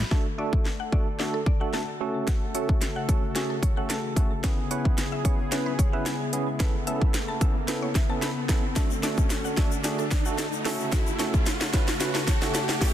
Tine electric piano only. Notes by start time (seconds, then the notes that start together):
0.11 A3 D4 F#4 A4
0.38 A3 D4 F#4 A4
0.92 A3 D4 F#4 A4
1.19 A3 D4 F#4 A4
1.61 A3 D4 F#4 A4
2.00 A3 C#4 F#4 A4
2.54 A3 C#4 F#4 A4
3.08 A3 C#4 F#4 A4
3.35 A3 C#4 F#4 G#4
3.77 A3 C#4 F#4 A4
4.17 A3 C#4 F#4 A4
4.44 B3 C#4 E4 G#4
4.71 B3 C#4 E4 B4
5.25 B3 C#4 E4 G#4
5.51 B3 C#4 E4 B4
5.93 B3 C#4 E4 B4
6.33 B3 C#4 E4 G#4
6.60 B3 C#4 E4 A4
6.87 B3 C#4 E4 A4
7.41 B3 C#4 E4 A4
7.68 B3 C#4 E4 A4
8.09 B3 C#4 E4 A4
8.49 B3 C#4 E4 A4
8.76 A3 D4 F#4 A4
9.03 A3 D4 F#4 A4
9.57 A3 D4 F#4 A4
9.84 A3 D4 F#4 G#4
10.25 A3 D4 F#4 A4
10.65 A3 C#4 F#4 A4
11.19 A3 C#4 F#4 A4
11.73 A3 C#4 F#4 B4
12.00 A3 C#4 F#4 B4
12.28 A5
12.41 A3 C#4 F#4 A4
12.54 F#5
12.81 A3 C#4 F#4 A4